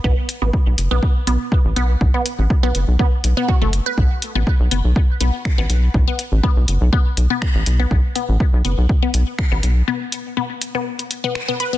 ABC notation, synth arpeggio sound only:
X:1
M:4/4
L:1/16
Q:"Swing 16ths" 1/4=122
K:Clyd
V:1 name="Synth arpeggio sound"
B, z2 B, z3 B, z2 B, z3 B, z | z B, z3 B, z2 B, z2 B, F A, z B | z3 B, z2 B, z3 B, z2 B, z2 | z B, z2 B, z3 B, z2 B, z3 B, |
z2 B, z3 B, z2 B, z3 B, z2 | B, z3 B, z2 B, z3 B, z B, B B, |]